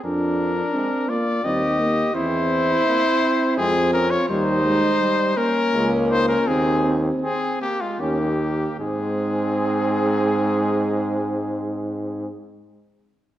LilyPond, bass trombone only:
\new Staff \with { instrumentName = "Bass trombone" } { \clef bass \time 3/4 \key aes \major \tempo 4 = 81 f,4 r4 ees,4 | e,4 r4 f,4 | ees,4 r4 des,4 | ees,4 r4 ees,4 |
aes,2.~ | aes,2. | }